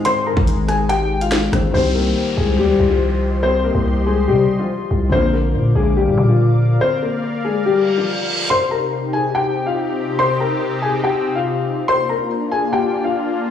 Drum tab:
HH |x---x-x-x--xx-x-|----------------|----------------|----------------|
SD |------r-----o-r-|----------------|----------------|----------------|
BD |---o------------|----------------|----------------|----------------|

HH |----------------|----------------|----------------|----------------|
SD |----------------|----------------|----------------|----------------|
BD |----------------|----------------|----------------|----------------|